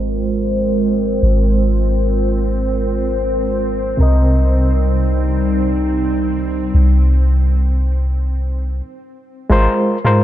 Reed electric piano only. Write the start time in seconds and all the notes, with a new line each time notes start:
Already playing: G#3 F4 A#4 C5
3.97 C3 C4 A#4
4.02 D#5
9.50 G#3 F4 A#4 C5
10.04 G#3 F4 A#4 C5